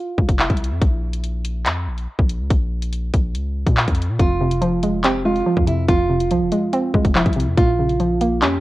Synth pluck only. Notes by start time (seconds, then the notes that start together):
4.20 F2
4.41 C3
4.62 F3
4.83 G#3
5.04 C4
5.25 G#3
5.46 F3
5.67 C3
5.89 F2
6.10 C3
6.31 F3
6.52 G#3
6.73 C4
6.95 G#3
7.15 F3
7.36 C3
7.57 A#2
7.79 C#3
8.00 F3
8.21 A#3
8.42 C#4